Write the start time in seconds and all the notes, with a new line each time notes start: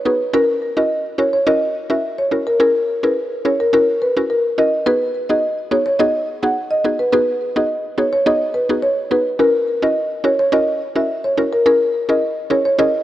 0.05 B3 D#4 F#4 G#4 B4
0.33 C#4 E4 F#4 A#4
0.77 C#4 E4 F#4 A#4 D#5
1.18 C#4 E4 F#4 A#4 C#5
1.33 C#5
1.47 C#4 E4 F#4 A#4 D#5
1.90 C#4 E4 F#4 A#4 E5
2.18 C#5
2.31 C#4 E4 F#4 A#4
2.47 A#4
2.60 C#4 E4 G#4 A#4
3.03 C#4 E4 G#4 A#4 B4
3.45 C#4 E4 G#4 A#4 C#5
3.60 A#4
3.73 C#4 E4 F#4 A#4
4.02 B4
4.17 C#4 E4 F#4 A#4
4.30 A#4
4.58 C#4 E4 F#4 A#4 D#5
4.86 B3 D#4 F#4 G#4 B4
5.29 B3 D#4 F#4 G#4 D#5
5.71 B3 D#4 F#4 G#4 C#5
5.86 C#5
5.99 B3 D#4 F#4 G#4 D#5
6.43 B3 D#4 F#4 G#4 F#5
6.71 D#5
6.85 B3 D#4 F#4 G#4
6.99 B4
7.13 B3 D#4 F#4 G#4 B4
7.56 B3 D#4 F#4 G#4 D#5
7.98 B3 D#4 F#4 G#4 C#5
8.13 C#5
8.26 B3 D#4 F#4 G#4 D#5
8.54 B4
8.69 B3 D#4 F#4 G#4
8.82 C#5
9.11 B3 D#4 F#4 G#4 B4
9.39 C#4 E4 F#4 A#4
9.83 C#4 E4 F#4 A#4 D#5
10.24 C#4 E4 F#4 A#4 C#5
10.39 C#5
10.52 C#4 E4 F#4 A#4 D#5
10.96 C#4 E4 F#4 A#4 E5
11.24 C#5
11.37 C#4 E4 F#4 A#4
11.52 A#4
11.66 C#4 E4 G#4 A#4
12.09 C#4 E4 G#4 A#4 D#5
12.50 C#4 E4 G#4 A#4 C#5
12.65 C#5
12.79 C#4 E4 G#4 A#4 D#5